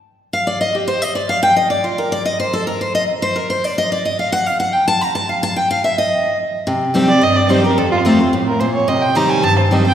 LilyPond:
<<
  \new Staff \with { instrumentName = "Fiddle" } { \time 4/4 \key c \dorian \tempo 4 = 218 r1 | r1 | r1 | r1 |
r1 | r1 | r4. d''8 ees''8 d''8 c''8 bes'8 | a'8 f'8 r4. bes'8 c''8 des''8 |
ees''8 g''8 bes''8 aes''8 a''8 c''8 ees''8 g''8 | }
  \new Staff \with { instrumentName = "Steel-string acoustic guitar" } { \time 4/4 \key c \dorian << { r4 f''8 d''8 ees''8 g'8 c''8 ees''8 | d''8 f''8 g''8 ees''8 d''8 f'8 bes'8 d''8 | ees''8 c''8 a'8 bes'8 c''8 ees''8 r8 c''8 | bes'8 c''8 d''8 ees''8 d''8 ees''8 f''8 fis''8 |
f''8 fis''8 g''8 a''8 bes''8 a''8 f''8 a''8 | g''8 f''8 e''8 ees''4. r4 | r4 <ees g c' g'>8 <c' g'>8 r4 <ees g c' g'>8 <c' g'>8 | r4 <f a c' f'>8 <c' f'>8 r2 |
r4 <ees g c' g'>4 r4 <ees g c' g'>8 <c' g'>8 | } \\ { r1 | r1 | r1 | r1 |
r1 | r1 | c2 g,2 | f,2 a,4 bes,4 |
c2 g,2 | } >> }
>>